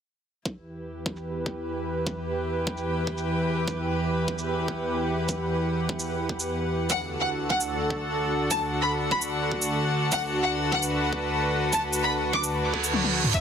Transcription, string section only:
0.45 7.71 E4 medium
0.66 6.90 G4 medium
1.48 7.77 B4 medium
2.25 4.68 G5 medium
4.56 13.34 F#5 medium
6.90 13.41 D4 medium
7.08 13.34 F#4 medium
8.05 13.41 A4 medium
13.34 13.41 E4 medium

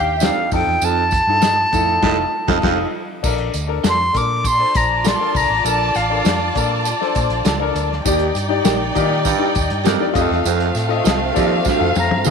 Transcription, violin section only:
0.00 0.16 G4 medium
0.00 0.16 G5 medium
4.45 8.02 F4 medium
4.45 8.02 D5 medium
4.45 8.02 A5 medium
8.06 10.12 D#4 medium
8.06 10.12 D5 medium
8.06 10.12 G5 medium
10.15 12.30 A3 medium
10.15 12.30 C4 medium
10.15 12.30 F5 medium

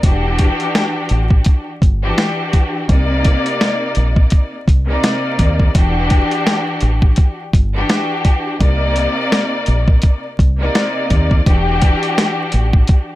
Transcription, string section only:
0.03 1.69 E3 loud
0.03 1.70 D4 loud
0.03 1.70 F#4 loud
0.03 1.70 G4 loud
2.03 2.83 E3 loud
2.03 2.83 D4 medium
2.03 2.84 F#4 medium
2.03 2.84 G4 loud
2.87 4.55 C3 loud
2.87 4.55 A#3 loud
2.87 4.55 D#4 loud
2.87 4.56 D5 loud
4.88 5.68 C3 loud
4.88 5.69 A#3 medium
4.88 5.69 D#4 medium
4.88 5.70 D5 loud
5.74 7.41 E3 loud
5.74 7.41 D4 loud
5.74 7.41 F#4 loud
5.74 7.42 G4 loud
7.74 8.55 E3 loud
7.74 8.55 D4 medium
7.74 8.55 F#4 medium
7.74 8.56 G4 loud
8.59 10.26 C3 loud
8.59 10.27 A#3 loud
8.59 10.27 D#4 loud
8.59 10.27 D5 loud
10.59 11.40 C3 loud
10.59 11.40 A#3 medium
10.59 11.41 D#4 medium
10.59 11.41 D5 loud
11.45 13.12 E3 loud
11.45 13.13 D4 loud
11.45 13.13 F#4 loud
11.45 13.13 G4 loud

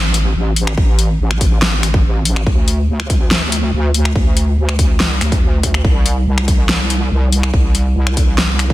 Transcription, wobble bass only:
0.00 0.34 A1 loud
0.35 0.76 A1 loud
0.78 1.18 A1 loud
1.20 2.03 A1 loud
2.04 2.45 A1 loud
2.47 2.87 D2 loud
2.89 3.72 D2 loud
3.73 4.14 D2 loud
4.16 4.56 D2 loud
4.58 5.02 D2 loud
5.02 5.20 C#2 loud
5.21 5.41 D2 loud
5.42 5.62 D2 loud
5.63 5.83 D2 loud
5.85 6.25 C2 loud
6.27 7.10 C2 loud
7.11 7.52 C2 loud
7.54 7.94 C2 loud
7.96 8.73 C2 loud

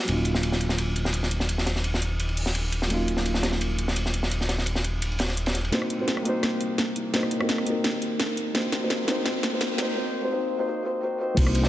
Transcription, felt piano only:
0.04 2.85 F#3 medium
0.04 2.87 A#3 medium
0.04 2.88 C#4 medium
0.09 2.89 D#4 medium
0.09 2.90 F4 medium
2.87 5.69 F#3 medium
2.87 5.69 A#3 medium
2.87 5.70 C#4 medium
2.92 5.71 D#4 medium
2.92 5.72 F4 medium
5.71 5.96 A#3 medium
5.71 5.97 C4 medium
5.71 5.97 D#4 medium
5.71 5.98 F#4 medium
5.71 5.98 C5 medium
5.98 6.21 A#3 medium
5.98 6.22 C4 medium
5.98 6.24 D#4 medium
5.98 6.24 F#4 medium
5.98 6.24 C5 medium
6.22 7.10 A#3 medium
6.22 7.11 C4 medium
6.22 7.12 D#4 medium
6.27 7.13 F#4 medium
6.27 7.13 C5 loud
7.12 7.37 A#3 medium
7.12 7.38 C4 medium
7.12 7.38 D#4 medium
7.12 7.39 F#4 medium
7.12 7.39 C5 medium
7.39 7.62 A#3 medium
7.39 7.63 C4 medium
7.39 7.65 D#4 medium
7.39 7.65 F#4 medium
7.39 7.65 A#4 medium
7.63 8.51 A#3 medium
7.63 8.52 C4 medium
7.63 8.53 D#4 medium
7.68 8.54 F#4 medium
7.68 8.55 A#4 medium
8.53 8.79 A#3 medium
8.53 8.79 C4 medium
8.53 8.80 D#4 medium
8.53 8.80 F#4 medium
8.53 8.80 C5 medium
8.80 9.03 A#3 medium
8.80 9.04 C4 medium
8.80 9.06 D#4 medium
8.80 9.06 F#4 medium
8.80 9.07 C5 medium
9.04 9.22 A#3 medium
9.04 9.23 C4 medium
9.04 9.24 D#4 medium
9.09 9.25 F#4 medium
9.09 9.25 C5 medium
9.24 9.49 A#3 medium
9.24 9.50 C4 medium
9.24 9.50 D#4 medium
9.24 9.51 F#4 medium
9.24 9.51 C5 medium
9.51 9.73 A#3 medium
9.51 9.75 C4 medium
9.51 9.76 D#4 medium
9.51 9.77 F#4 medium
9.51 9.77 C5 medium
9.75 9.93 A#3 medium
9.75 9.94 C4 medium
9.75 9.95 D#4 medium
9.80 9.95 F#4 medium
9.80 9.96 C5 loud
9.94 10.20 A#3 medium
9.94 10.20 C4 medium
9.94 10.21 D#4 medium
9.94 10.21 F#4 medium
9.94 10.22 C5 medium
10.21 10.28 A#3 medium
10.21 10.29 C4 medium
10.21 10.30 D#4 medium
10.21 10.30 F#4 medium
10.21 10.31 C5 medium
10.30 10.55 A#3 medium
10.30 10.56 C4 medium
10.30 10.56 D#4 medium
10.30 10.56 F#4 medium
10.30 10.57 C5 medium
10.57 10.63 A#3 medium
10.57 10.64 C4 medium
10.57 10.65 D#4 medium
10.57 10.66 F#4 medium
10.57 10.66 C5 medium
10.65 10.81 A#3 medium
10.65 10.82 C4 medium
10.65 10.83 D#4 medium
10.65 10.83 F#4 medium
10.65 10.84 C5 medium
10.83 10.99 A#3 medium
10.83 11.00 C4 medium
10.83 11.01 D#4 medium
10.83 11.01 F#4 medium
10.83 11.01 C5 medium
11.00 11.16 A#3 medium
11.00 11.17 C4 medium
11.00 11.18 D#4 medium
11.00 11.19 F#4 medium
11.00 11.19 C5 medium
11.18 11.34 A#3 medium
11.18 11.35 C4 medium
11.18 11.36 D#4 medium
11.18 11.36 F#4 medium
11.18 11.37 C5 medium
11.36 11.61 A#3 medium
11.36 11.62 C4 medium
11.36 11.62 D#4 medium
11.36 11.62 F#4 medium
11.36 11.63 C5 medium
11.62 11.69 A#3 medium
11.62 11.69 C4 medium
11.62 11.69 D#4 medium
11.62 11.69 F#4 medium

